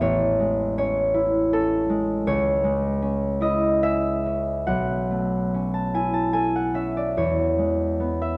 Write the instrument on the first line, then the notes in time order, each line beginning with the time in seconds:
harp
Already playing: G#3 E4 G#4 E5
0.01 A1 C#5
0.40 G#3
0.78 C#4 C#5
1.14 E4
1.53 C#4 A4
1.89 G#3
2.27 C#2 C#5
2.64 G#3
3.02 C#4
3.41 E4 D#5
3.83 G#4 E5
4.26 C#4
4.67 B1 F#5
5.11 A3
5.54 C#4
5.74 A5
5.94 E4 G#5
6.14 A5
6.33 A4 G#5
6.56 F#5
6.74 C#4 E5
6.97 D5
7.17 E2 C#5
7.58 G#3
8.00 B3
8.22 E5